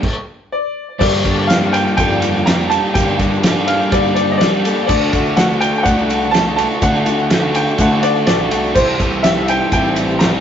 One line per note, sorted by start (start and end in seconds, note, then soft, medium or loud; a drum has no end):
0.03 kick medium
0.03 crash medium
0.52 0.98 D5 medium
0.99 1.98 G2 medium
0.99 1.21 G2 loud
0.99 1.49 D3 medium
0.99 1.27 G3 loud
0.99 1.27 A#3 loud
0.99 1.25 D4 loud
0.99 4.86 G4 medium
0.99 1.52 A4 medium
0.99 1.45 D5 medium
0.99 10.40 A5 medium
0.99 8.72 D6 medium
0.99 kick loud
0.99 crash loud
0.99 shaker medium
1.03 1.24 G4 loud
1.24 1.85 G2 medium
1.24 1.49 G3 medium
1.24 1.50 A#3 medium
1.24 1.51 D4 medium
1.24 1.52 G4 medium
1.24 kick medium
1.24 ride medium
1.24 shaker medium
1.38 shaker soft
1.47 1.98 G3 medium
1.47 1.99 A#3 medium
1.47 1.73 F5 medium
1.47 snare loud
1.47 ride medium
1.47 shaker medium
1.52 2.01 D4 medium
1.52 2.00 G4 medium
1.52 2.00 A4 medium
1.63 shaker soft
1.73 1.95 G5 loud
1.73 ride medium
1.73 shaker medium
1.87 shaker soft
1.97 2.78 F2 loud
1.97 2.47 G2 medium
1.97 2.47 D3 loud
1.97 2.25 G3 medium
1.97 2.24 A#3 medium
1.97 2.48 A4 loud
1.97 2.48 G5 loud
1.97 kick medium
1.97 ride loud
1.97 shaker medium
2.01 2.23 D4 loud
2.01 2.21 G4 loud
2.12 shaker soft
2.22 2.45 G3 medium
2.22 2.46 A#3 medium
2.22 2.48 D4 medium
2.22 2.49 G4 medium
2.22 ride medium
2.22 shaker medium
2.35 shaker soft
2.46 2.73 G3 medium
2.46 2.72 A#3 medium
2.46 2.71 D4 medium
2.46 2.69 G4 medium
2.46 2.97 A4 medium
2.46 2.71 A#5 loud
2.46 snare loud
2.46 ride loud
2.46 shaker loud
2.60 shaker soft
2.70 2.95 A#3 medium
2.70 2.97 D4 medium
2.70 2.96 G4 medium
2.70 2.95 A5 loud
2.70 ride medium
2.70 shaker medium
2.74 2.94 G3 medium
2.84 shaker soft
2.94 3.43 G2 medium
2.94 3.43 D3 medium
2.94 3.21 G3 loud
2.94 3.15 G3 loud
2.94 3.19 A#3 loud
2.94 3.20 D4 loud
2.94 3.17 G4 loud
2.94 3.45 A4 medium
2.94 3.40 G5 medium
2.94 kick loud
2.94 ride loud
2.94 shaker loud
3.19 3.79 G2 medium
3.19 3.41 G3 medium
3.19 3.43 A#3 medium
3.19 3.45 D4 medium
3.19 3.45 G4 medium
3.19 kick medium
3.19 ride medium
3.19 shaker medium
3.33 shaker soft
3.43 3.91 G3 medium
3.43 3.91 A#3 medium
3.43 3.93 D4 medium
3.43 3.93 G4 medium
3.43 3.94 A4 medium
3.43 snare loud
3.43 ride loud
3.43 shaker loud
3.57 shaker soft
3.67 3.90 F5 medium
3.67 ride medium
3.82 shaker soft
3.91 4.40 G2 loud
3.91 4.40 D3 loud
3.91 4.18 G3 loud
3.91 4.72 G3 loud
3.91 4.17 A#3 medium
3.91 4.16 D4 loud
3.91 4.14 G4 loud
3.91 4.43 A4 medium
3.91 4.13 D5 medium
3.91 kick medium
3.91 ride loud
3.91 shaker loud
4.06 shaker soft
4.15 4.40 A#3 medium
4.15 4.42 D4 medium
4.15 4.42 G4 medium
4.15 4.33 D5 medium
4.15 ride medium
4.15 shaker medium
4.19 4.39 G3 medium
4.30 4.40 D#5 medium
4.30 shaker soft
4.38 4.67 G3 medium
4.38 4.66 A#3 medium
4.38 4.85 D5 medium
4.38 snare loud
4.38 ride loud
4.42 4.65 D4 medium
4.42 4.63 G4 medium
4.42 4.63 A4 medium
4.42 shaker loud
4.54 shaker soft
4.64 4.87 G3 medium
4.64 4.89 A#3 medium
4.64 4.89 D4 medium
4.64 4.87 G4 medium
4.64 4.88 A4 medium
4.64 ride medium
4.64 shaker medium
4.78 shaker soft
4.86 5.09 D2 loud
4.86 5.36 D3 medium
4.86 5.16 A3 loud
4.86 5.14 D4 loud
4.86 8.73 F#4 medium
4.86 5.11 A4 medium
4.86 5.38 D5 medium
4.86 8.72 D5 medium
4.86 kick loud
4.86 crash loud
4.86 shaker loud
4.91 5.12 F#4 loud
5.02 shaker soft
5.12 5.39 D4 medium
5.12 5.40 F#4 medium
5.12 5.37 A4 medium
5.12 kick medium
5.12 ride medium
5.12 shaker medium
5.16 5.37 A3 medium
5.26 shaker soft
5.37 5.84 D3 medium
5.37 5.86 A3 medium
5.37 5.87 D4 medium
5.37 5.87 F#4 medium
5.37 5.86 A4 medium
5.37 5.59 F#5 medium
5.37 snare loud
5.37 ride medium
5.37 shaker medium
5.51 shaker soft
5.61 5.76 G5 loud
5.61 ride medium
5.61 shaker medium
5.74 5.85 G5 medium
5.74 shaker soft
5.83 6.65 C2 loud
5.83 6.33 D3 loud
5.83 6.13 A3 medium
5.83 6.35 A4 medium
5.83 6.34 F#5 loud
5.83 kick medium
5.83 ride medium
5.83 shaker loud
5.88 6.10 D4 loud
5.88 6.08 F#4 loud
5.98 shaker soft
6.09 6.35 A3 medium
6.09 6.35 D4 medium
6.09 6.36 F#4 medium
6.09 ride medium
6.09 shaker medium
6.22 shaker soft
6.31 6.81 D3 medium
6.31 6.61 A3 medium
6.31 6.82 A4 medium
6.31 6.55 A5 loud
6.31 snare loud
6.31 ride loud
6.31 shaker loud
6.36 6.59 D4 medium
6.36 6.57 F#4 medium
6.47 shaker soft
6.56 6.84 D4 medium
6.56 6.85 F#4 medium
6.56 6.80 A5 medium
6.56 ride medium
6.56 shaker medium
6.62 6.83 A3 medium
6.71 shaker soft
6.82 7.29 D3 medium
6.82 7.02 D3 loud
6.82 7.10 A3 loud
6.82 7.08 D4 loud
6.82 7.05 A4 medium
6.82 7.28 F#5 medium
6.82 kick loud
6.82 ride loud
6.82 shaker loud
6.86 7.05 F#4 loud
6.95 shaker soft
7.06 7.66 D2 medium
7.06 7.31 A3 medium
7.06 7.31 D4 medium
7.06 7.33 F#4 medium
7.06 7.31 A4 medium
7.06 ride medium
7.06 shaker medium
7.18 shaker soft
7.30 7.77 D3 medium
7.30 7.79 A3 medium
7.30 7.79 D4 medium
7.30 7.80 F#4 medium
7.30 7.80 A4 medium
7.30 snare loud
7.30 ride loud
7.30 shaker medium
7.55 7.80 G5 medium
7.55 ride medium
7.55 shaker medium
7.68 shaker soft
7.78 8.25 D3 medium
7.78 8.19 D3 loud
7.78 8.06 A3 loud
7.78 8.03 D4 loud
7.78 8.01 F#4 loud
7.78 8.29 A4 loud
7.78 8.05 F#5 medium
7.78 kick medium
7.78 ride loud
7.78 shaker loud
8.02 8.27 A3 medium
8.02 8.27 D4 medium
8.02 8.28 F#4 medium
8.02 8.25 D5 medium
8.02 ride medium
8.02 shaker medium
8.16 shaker soft
8.26 8.49 A1 medium
8.26 8.74 D3 medium
8.26 8.54 A3 medium
8.26 8.51 D4 medium
8.26 8.50 F#4 medium
8.26 8.50 A4 medium
8.26 8.72 D5 medium
8.26 snare loud
8.26 ride loud
8.26 shaker loud
8.40 shaker soft
8.51 8.73 C2 medium
8.51 8.75 A3 medium
8.51 8.75 D4 medium
8.51 8.74 F#4 medium
8.51 8.76 A4 medium
8.51 ride medium
8.51 shaker medium
8.65 shaker soft
8.73 8.96 C2 loud
8.73 9.71 C3 medium
8.73 9.22 E3 medium
8.73 9.02 G3 loud
8.73 9.00 C4 loud
8.73 9.24 E4 medium
8.73 10.40 G4 medium
8.73 8.99 G4 loud
8.73 9.25 A4 medium
8.73 9.25 C5 medium
8.73 10.40 C5 medium
8.73 10.40 E6 medium
8.73 kick loud
8.73 crash loud
8.73 shaker loud
8.88 shaker soft
8.99 9.59 C2 medium
8.99 9.23 G3 medium
8.99 9.25 C4 medium
8.99 9.26 G4 medium
8.99 kick medium
8.99 ride medium
8.99 shaker medium
9.13 shaker soft
9.22 9.71 E3 medium
9.22 9.72 G3 medium
9.22 9.72 C4 medium
9.22 9.74 E4 medium
9.22 9.74 G4 medium
9.22 9.48 E5 medium
9.22 snare loud
9.22 ride loud
9.22 shaker loud
9.27 9.74 A4 medium
9.37 shaker soft
9.48 9.71 G5 loud
9.48 ride medium
9.48 shaker medium
9.71 10.40 A1 loud
9.71 10.20 C3 medium
9.71 10.19 E3 medium
9.71 9.98 G3 medium
9.71 9.96 C4 loud
9.71 10.22 E4 medium
9.71 9.94 G4 loud
9.71 10.22 G5 loud
9.71 kick medium
9.71 ride medium
9.71 shaker loud
9.75 10.22 A4 medium
9.85 shaker soft
9.95 10.21 G3 medium
9.95 10.21 C4 medium
9.95 10.23 G4 medium
9.95 ride medium
9.95 shaker medium
10.09 shaker soft
10.19 10.40 E3 medium
10.19 10.40 G3 medium
10.19 10.40 C4 medium
10.19 10.40 A#5 loud
10.19 snare loud
10.19 ride medium
10.19 shaker loud
10.23 10.40 E4 medium
10.23 10.40 G4 medium
10.23 10.40 A4 medium
10.34 shaker soft